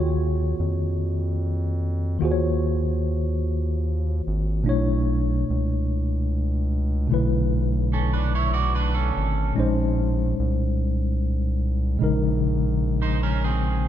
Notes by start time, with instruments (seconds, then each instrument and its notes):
Already playing: analog synth bass D#2, tine electric piano D#3 A#3 F4 F#4 G#4 C#5
0.60 analog synth bass F2
2.19 analog synth bass D#2, tine electric piano D#3 A#3 F4 F#4
2.24 tine electric piano G#4 C5
2.31 tine electric piano C#5
4.27 analog synth bass G#1
4.63 tine electric piano B2 A3 D4
4.67 analog synth bass B1, tine electric piano E4 C#5
5.50 analog synth bass C#2
7.07 tine electric piano B2 D3 A3
7.12 analog synth bass B1, tine electric piano E4 B4
7.93 clean electric guitar C#4 A4
8.13 clean electric guitar D4 B4
8.35 clean electric guitar E4 C#5
8.54 clean electric guitar F#4 D5
8.75 clean electric guitar D4 B4
8.94 clean electric guitar C#4 A4
9.17 analog synth bass G#1
9.53 tine electric piano A#2 G#3 C#4
9.58 analog synth bass A#1, tine electric piano D#4 C5
10.39 analog synth bass C2
11.98 tine electric piano A#2 C#3 G#3
12.02 analog synth bass A#1, tine electric piano D#4 A#4
13.02 clean electric guitar D#4 C5
13.23 clean electric guitar C#4 A#4
13.44 clean electric guitar C4 G#4